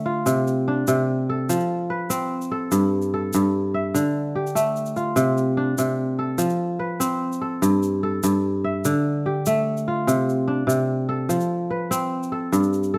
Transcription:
Already playing: D3 A3 G4
0.06 F4
0.26 C3, shaker
0.47 shaker
0.68 D4
0.87 C3, shaker
1.29 A4
1.49 F3, shaker
1.60 shaker
1.90 B4
2.10 C4, shaker
2.42 shaker
2.51 A4
2.72 G2, shaker
3.02 shaker
3.14 A4
3.33 G2, shaker
3.74 E5
3.94 D3, shaker
4.35 G4
4.47 shaker
4.55 A3, shaker
4.76 shaker
4.86 shaker
4.96 F4, shaker
5.16 C3, shaker
5.37 shaker
5.57 D4
5.78 C3, shaker
6.19 A4
6.38 F3, shaker
6.50 shaker
6.79 B4
7.00 C4, shaker
7.32 shaker
7.41 A4
7.62 G2, shaker
7.83 shaker
8.03 A4
8.23 G2, shaker
8.64 E5
8.85 D3, shaker
9.26 G4
9.46 A3, shaker
9.77 shaker
9.88 F4
10.07 C3, shaker
10.29 shaker
10.48 D4
10.67 C3, shaker
11.09 A4
11.29 F3, shaker
11.40 shaker
11.70 B4
11.91 C4, shaker
12.23 shaker
12.32 A4
12.52 G2, shaker
12.63 shaker
12.73 shaker
12.83 shaker
12.94 A4

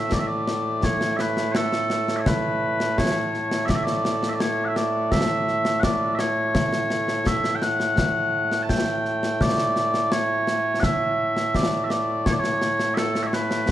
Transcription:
Already playing: A2 A3 E5
0.12 D5, concert bass drum, snare
0.19 E5
0.27 D5
0.47 snare
0.83 C#5, concert bass drum, snare
1.01 snare
1.17 B4 E5, snare
1.37 snare
1.52 A4 C#5, snare
1.73 snare
1.90 snare
2.08 snare
2.16 C#5 E5
2.26 B4, concert bass drum, snare
2.80 snare
2.98 C#5, concert bass drum, snare
3.16 snare
3.34 snare
3.51 snare
3.66 D5 E5, concert bass drum, snare
3.75 E5
3.83 D5, snare
4.05 snare
4.23 snare
4.29 E5
4.34 D5
4.40 C#5, snare
4.65 E5 F#5
4.76 D5, snare
5.12 E5, concert bass drum, snare
5.48 snare
5.65 snare
5.80 D5 F#5, concert bass drum, snare
6.15 E5, snare
6.19 C#5
6.55 concert bass drum, snare
6.72 snare
6.90 snare
7.08 snare
7.26 E5, concert bass drum, snare
7.44 snare
7.55 G5
7.62 F#5, snare
7.80 snare
7.98 concert bass drum, snare
8.52 snare
8.63 A5
8.69 G5, concert bass drum, snare
8.87 snare
9.05 snare
9.23 snare
9.41 D5, concert bass drum, snare
9.58 snare
9.76 snare
9.94 snare
10.12 C#5, snare
10.47 snare
10.80 E5 F#5, concert bass drum, snare
11.37 snare
11.54 D5, concert bass drum, snare
11.84 E5
11.90 D5, snare
12.26 C#5, concert bass drum, snare
12.33 D5
12.40 C#5
12.44 snare
12.62 snare
12.79 snare
12.94 A4 E5, snare
13.15 snare
13.23 C#5 E5
13.33 B4, snare
13.51 snare

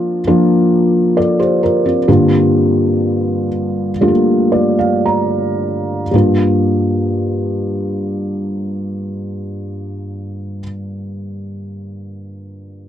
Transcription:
Already playing: F3 A#3 D4 F4
0.27 F3 A#3 D4 F4
1.17 A4 D5
1.39 G4 C5
1.63 F4 A#4
1.86 C4 F4
2.08 G2 D3 G3 A#3 D4 F4
4.01 G3 A3 D4 F4
4.08 A#3
4.52 D5
4.79 F5
5.06 A#5
6.11 G2 G3 A#3 D4 F4

